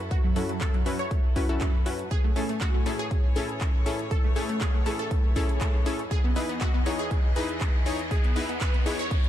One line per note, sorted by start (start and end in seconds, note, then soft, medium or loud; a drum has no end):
0.00 2.07 F#2 medium
0.00 2.07 F#3 medium
0.00 2.07 E4 medium
0.00 2.07 A4 medium
0.11 0.18 F#4 loud
0.11 kick loud
0.11 closed hi-hat medium
0.24 0.31 F#3 medium
0.36 0.43 F#3 medium
0.36 0.50 C#4 medium
0.36 0.50 E4 medium
0.36 0.50 F#4 medium
0.36 0.50 A4 medium
0.36 open hi-hat loud
0.49 0.56 F#3 medium
0.49 closed hi-hat medium
0.61 0.68 A4 medium
0.61 kick loud
0.61 clap loud
0.61 closed hi-hat medium
0.74 0.81 F#3 medium
0.74 closed hi-hat soft
0.86 0.93 F#3 medium
0.86 1.00 C#4 medium
0.86 1.00 E4 medium
0.86 1.00 F#4 medium
0.86 1.00 B4 medium
0.86 open hi-hat loud
0.99 2.02 C#5 medium
0.99 closed hi-hat soft
1.11 kick loud
1.11 closed hi-hat medium
1.36 1.47 C#4 medium
1.36 1.47 E4 medium
1.36 1.47 F#4 medium
1.36 1.47 B4 medium
1.36 kick medium
1.36 open hi-hat loud
1.49 1.62 C#4 medium
1.49 1.62 E4 medium
1.49 1.62 F#4 medium
1.49 1.62 A4 loud
1.49 closed hi-hat soft
1.61 kick loud
1.61 clap loud
1.61 closed hi-hat medium
1.86 2.08 C#4 medium
1.86 2.08 E4 medium
1.86 2.08 F#4 medium
1.86 2.08 B4 medium
1.86 open hi-hat loud
1.99 closed hi-hat soft
2.11 6.07 A2 medium
2.11 6.07 E3 medium
2.11 2.18 G#4 loud
2.11 6.07 C#5 medium
2.11 4.09 G#5 medium
2.11 kick loud
2.11 closed hi-hat medium
2.11 riser medium
2.24 2.31 A3 medium
2.36 2.43 A3 medium
2.36 2.50 C#4 medium
2.36 2.50 E4 medium
2.36 2.50 G#4 medium
2.36 2.50 A4 medium
2.36 open hi-hat loud
2.49 2.56 A3 medium
2.49 closed hi-hat soft
2.61 2.68 F#4 medium
2.61 kick loud
2.61 clap loud
2.61 closed hi-hat medium
2.74 2.81 A3 medium
2.86 2.93 A3 medium
2.86 3.00 C#4 medium
2.86 3.00 E4 medium
2.86 3.00 G#4 medium
2.86 3.00 A4 loud
2.86 open hi-hat loud
2.99 4.02 G#4 medium
2.99 closed hi-hat soft
3.11 kick loud
3.11 closed hi-hat medium
3.36 3.83 C#4 loud
3.36 3.83 E4 medium
3.36 3.83 G#4 medium
3.36 3.83 A4 loud
3.36 open hi-hat loud
3.49 closed hi-hat soft
3.61 kick loud
3.61 clap loud
3.61 closed hi-hat medium
3.86 4.00 C#4 medium
3.86 4.00 E4 medium
3.86 4.00 G#4 medium
3.86 4.00 A4 loud
3.86 open hi-hat loud
3.99 closed hi-hat soft
4.11 6.09 A3 medium
4.11 4.18 A4 loud
4.11 kick loud
4.11 closed hi-hat medium
4.24 4.31 A3 medium
4.36 4.43 A3 medium
4.36 4.50 C#4 medium
4.36 4.50 E4 medium
4.36 4.50 G#4 medium
4.36 4.50 A4 loud
4.36 open hi-hat loud
4.49 4.56 A3 medium
4.49 closed hi-hat medium
4.61 4.68 G#4 medium
4.61 kick loud
4.61 clap loud
4.61 closed hi-hat medium
4.74 4.81 A3 medium
4.86 4.93 A3 medium
4.86 5.00 C#4 medium
4.86 5.00 E4 medium
4.86 5.00 G#4 medium
4.86 5.00 A4 loud
4.86 open hi-hat loud
4.99 6.02 A4 medium
4.99 closed hi-hat medium
5.11 kick loud
5.11 closed hi-hat medium
5.36 5.83 C#4 loud
5.36 5.83 E4 medium
5.36 5.83 G#4 medium
5.36 5.83 A4 loud
5.36 kick medium
5.36 open hi-hat loud
5.49 closed hi-hat soft
5.61 kick loud
5.61 clap loud
5.61 closed hi-hat medium
5.86 6.00 C#4 loud
5.86 6.00 E4 medium
5.86 6.00 G#4 medium
5.86 6.00 A4 loud
5.86 open hi-hat loud
5.99 closed hi-hat soft
6.11 9.29 E2 medium
6.11 9.29 E3 medium
6.11 6.18 G#4 loud
6.11 9.29 G#4 medium
6.11 9.29 D#5 medium
6.11 kick loud
6.11 closed hi-hat medium
6.24 6.31 B3 medium
6.36 6.43 B3 medium
6.36 6.50 D#4 medium
6.36 6.50 E4 medium
6.36 6.50 G#4 medium
6.36 6.50 B4 medium
6.36 open hi-hat loud
6.49 6.56 B3 medium
6.49 closed hi-hat medium
6.61 6.68 F#4 medium
6.61 kick loud
6.61 clap loud
6.61 closed hi-hat medium
6.74 6.81 B3 medium
6.86 6.93 B3 medium
6.86 7.00 D#4 medium
6.86 7.00 E4 medium
6.86 7.00 G#4 medium
6.86 7.00 C#5 medium
6.86 open hi-hat loud
6.99 8.02 G#4 medium
6.99 closed hi-hat medium
7.11 kick loud
7.11 closed hi-hat medium
7.36 7.83 D#4 loud
7.36 7.83 E4 medium
7.36 7.83 G#4 medium
7.36 7.83 B4 loud
7.36 open hi-hat loud
7.49 closed hi-hat medium
7.61 kick loud
7.61 clap loud
7.61 closed hi-hat medium
7.86 8.00 D#4 loud
7.86 8.00 E4 medium
7.86 8.00 G#4 medium
7.86 8.00 C#5 loud
7.86 open hi-hat loud
7.99 closed hi-hat medium
8.11 8.18 G#4 loud
8.11 kick loud
8.11 closed hi-hat medium
8.24 8.31 B3 medium
8.24 closed hi-hat soft
8.36 8.43 B3 medium
8.36 8.50 D#4 medium
8.36 8.50 E4 medium
8.36 8.50 G#4 medium
8.36 8.50 B4 loud
8.36 open hi-hat loud
8.49 8.56 B3 medium
8.49 closed hi-hat medium
8.61 8.68 B4 medium
8.61 kick loud
8.61 clap loud
8.61 closed hi-hat medium
8.74 8.81 B3 medium
8.74 closed hi-hat soft
8.86 8.93 B3 medium
8.86 9.00 D#4 medium
8.86 9.00 E4 medium
8.86 9.00 G#4 medium
8.86 9.00 C#5 loud
8.86 open hi-hat loud
8.99 9.29 C#5 medium
8.99 closed hi-hat medium
9.11 kick loud
9.11 closed hi-hat medium
9.24 closed hi-hat soft